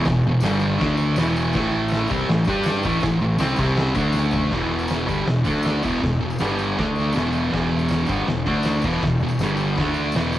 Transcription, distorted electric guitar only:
0.08 E2 B2
0.27 E2 B2
0.43 G2 D3 G3
0.79 D3 A3 D4
1.18 E2 B2 E3
1.54 A2 E3 A3
2.10 C3 G3 C4
2.30 A2 E3
2.47 G3 D4 G4
2.84 A2 E3 A3
3.03 A2 E3
3.21 A2 E3
3.39 C3 G3 C4
3.59 C3 G3 C4
3.95 D3 A3 D4
4.51 E2 B2 E3
5.07 G2 D3 G3
5.27 E2 B2
5.44 D3 A3 D4
5.83 E2 B2 E3
6.02 E2 B2
6.20 E2 B2
6.39 G2 D3 G3
6.78 D3 A3 D4
7.14 E2 B2 E3
7.52 E2 B2 E3
8.08 G2 D3 G3
8.27 E2 B2
8.46 D3 A3 D4
8.83 E2 B2 E3
9.04 E2 B2
9.23 E2 B2
9.41 G2 D3 G3
9.79 D3 A3 D4
10.15 E2 B2 E3

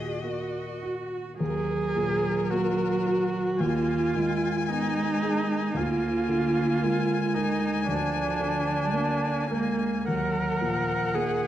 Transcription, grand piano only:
Already playing: D#2 A#2 F#4
0.23 A#3
0.83 F#4
1.40 D#2
1.96 A#2
2.51 A#3
3.06 F#4
3.61 D#2
4.15 D#3
4.69 B3
5.23 G#4
5.75 D2
6.29 D3
6.82 A#3
7.36 A#4
7.88 D2
8.40 D3
8.93 A#3
9.51 A#4
10.08 D#2
10.61 A#2
11.15 A#3

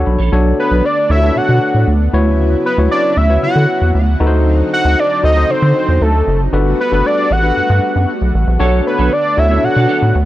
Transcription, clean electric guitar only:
0.06 muted clean electric guitar stroke
0.19 D4 A4 C#5
8.60 D4 A4 C#5
8.85 muted clean electric guitar stroke
8.98 D4 A4 C#5
9.11 muted clean electric guitar stroke
9.24 muted clean electric guitar stroke
9.50 muted clean electric guitar stroke
9.63 muted clean electric guitar stroke
9.75 D4 A4 D5
9.88 D4 A4 C#5
10.01 muted clean electric guitar stroke
10.14 muted clean electric guitar stroke

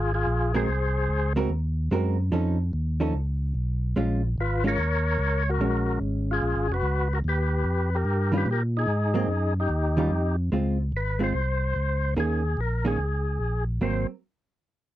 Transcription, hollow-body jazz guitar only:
0.54 G#3 C4 F#4 A#4
1.36 G#3 C4 F#4 A#4
1.92 G#3 C4 F#4 A#4
2.32 F3 C#4 D#4 A4
3.00 F3 C#4 D#4 A4
3.96 G#3 C#4 F4
4.64 G#3 C#4 F4
5.61 G#3 C#4
8.32 D#3 G3 C#4 F4
9.14 F#3 A#3 C4
9.97 D#3 G3 C#4 F4
10.52 G#3 C4 F4
11.19 G#3 C4 F4
12.17 D#3 A#3 C#4 G#4
12.85 D#3 A#3 C#4 G#4
13.81 F#3 A#3 C4

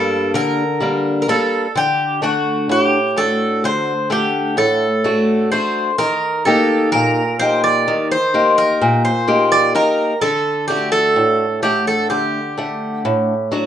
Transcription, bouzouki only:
Already playing: A4
0.35 A#4
1.22 A#4
1.29 A4
1.77 G4
2.24 F#4
2.72 F#4
2.83 G4
3.18 A4
3.65 C5
4.12 G4
4.58 A4
5.52 C5
5.98 A#4
6.45 A4
6.92 A#4
7.39 C5
7.64 D5
8.12 C5
8.58 A#4
9.05 C5
9.52 D5
9.75 A#4
10.21 A4
10.68 G4
10.92 A4
11.63 G4
11.87 A4
12.10 G4

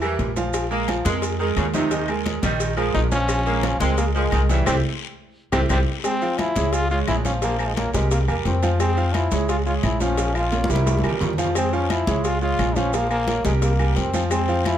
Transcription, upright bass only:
Already playing: E2
0.19 A#1
1.05 F2
1.57 D#2
2.43 A#1
2.94 A#1
3.80 C#2
4.32 C2
4.67 C2
5.53 C2
5.70 C2
6.56 C#2
7.07 A#1
7.94 C2
8.28 E2
8.45 F2
9.32 C#2
9.84 A#1
10.70 C2
11.04 E2
11.21 F2
12.07 C#2
12.59 A#1
13.45 C2
13.97 F2

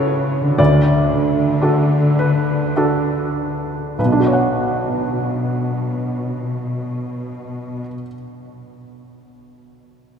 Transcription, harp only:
Already playing: C#3 E4 F#4 A4
0.41 D3
0.45 D4
0.50 F#4
0.54 A4
3.99 B2
4.06 B3
4.13 D4
4.20 F#4
4.27 C#5
4.34 F#5

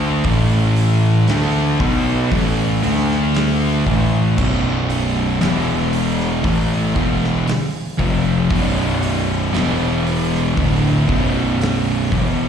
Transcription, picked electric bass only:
Already playing: D2
0.25 A1
1.29 D2
1.80 B1
2.32 A1
2.83 D2
3.87 A1
4.38 B0
5.42 E1
6.44 A1
6.96 E1
7.47 muted picked electric bass stroke
8.00 F1
8.51 B0
9.54 E1
10.58 D1
11.09 B0
12.12 E1

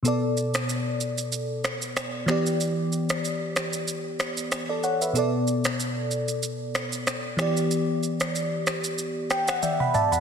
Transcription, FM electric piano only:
0.03 B2 B3 A4
0.08 D5
2.26 E3 B3 G4
2.31 D5
4.69 A4 D5
4.84 C#5 F#5
5.01 B4 E5
5.13 B2 B3 A4
5.18 D5
7.37 E3 B3 G4
7.42 D5
9.30 G5
9.48 F#5
9.63 D5 E5 G5
9.80 F#5 B5
9.94 D5 E5 A5
10.12 F#5 B5

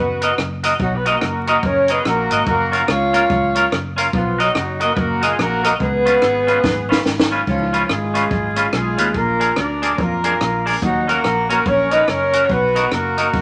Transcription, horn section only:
Already playing: B3 F#4 B4
0.81 F#3 D#4 F#4
0.95 B3 B4
1.06 A#3 F#4 A#4
1.48 A#3 F#4 A#4
1.64 C#4 A#4 C#5
1.90 B3 G#4 B4
2.06 A#3 F#4 A#4
2.48 A#3 F#4 A#4
2.90 F4 C#5 F5
4.14 F3 B3 F4
4.39 F#3 D#4 F#4
4.81 A#3 F#4 A#4
4.94 A#3 B3 A#4 B4
4.98 F#4
5.23 G#3 F4 G#4
5.39 A#3 F#4 A#4
5.64 A#3 F#4 A#4
5.81 B3 G#4 B4
7.49 F3 C#4 F4
7.90 G#3 F4 G#4
8.74 G#3 F4 G#4
9.16 A#3 F4 A#4
9.57 D4 A#4 D5
9.99 A#3 F4 A#4
10.83 F#3 D#4 F#4
11.09 A#3 F#4 A#4
11.50 A#3 F#4 A#4
11.66 C#4 A#4 C#5
11.92 D#4 B4 D#5
12.08 C#4 A#4 C#5
12.45 C#4 C#5
12.50 B3 F#4 B4
12.92 A#3 F#4 A#4

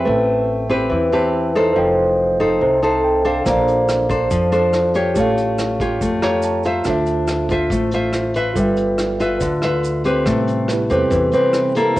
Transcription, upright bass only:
0.07 A1
0.92 E2
1.76 F1
2.61 C2
3.46 A#1
4.31 F2
5.16 A1
6.01 F2
6.86 D2
7.71 A1
8.55 G1
9.41 D2
10.26 A1
10.91 E2
11.11 E2

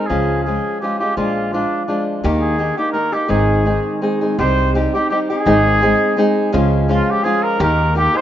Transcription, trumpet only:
0.07 G#4
0.43 G#4
0.81 G4
0.98 G4
1.17 F4
1.53 D4
1.86 D4
2.40 G#4
2.78 G4
2.92 A#4
3.13 G4
3.30 G#4
4.40 C5
4.94 G4
5.10 G4
5.29 G#4
6.93 F4
7.10 G4
7.23 G#4
7.43 A#4
7.61 A#4
7.97 G4
8.17 C5

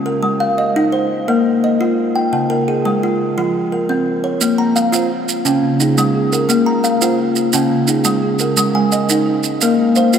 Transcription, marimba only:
4.58 A#3
4.94 C5
5.11 F4
5.46 G5
5.63 C#3
5.81 G#4
6.15 C#4 G#4
6.32 C#4
6.66 A#3
7.02 C5
7.18 F4
7.53 G5
7.70 C#3
7.88 G#4
8.22 C#4 G#4
8.39 C#4
8.74 G#3
9.08 A#4
9.26 D#4
9.61 F5
9.78 A#3
9.95 F5

